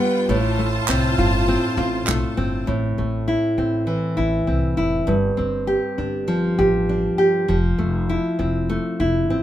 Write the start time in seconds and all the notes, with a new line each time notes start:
Already playing: G2 G3 F4 G4 B4 G5
0.00 B3
0.27 A1 A2 F4 C5 A5
0.59 A3
0.88 C2 C4, clap
1.18 G1 F4
1.48 C4
1.77 A1 F4
2.07 B1 A3, clap
2.37 G1 C4
2.67 A1 A2
2.98 A1 A3
3.28 E4
3.58 A1 C4
3.87 E3
4.17 A1 E4
4.47 C2 C4
4.77 F1 E4
5.07 G1 G2
5.37 G1 C4
5.67 G4
5.98 G1 D4
6.28 F3
6.59 A1 G4
6.89 D4
7.18 G4
7.48 F1 F3
7.78 F1 A3
8.09 E4
8.39 F1 C4
8.69 A3
9.00 F1 E4
9.29 A1 C4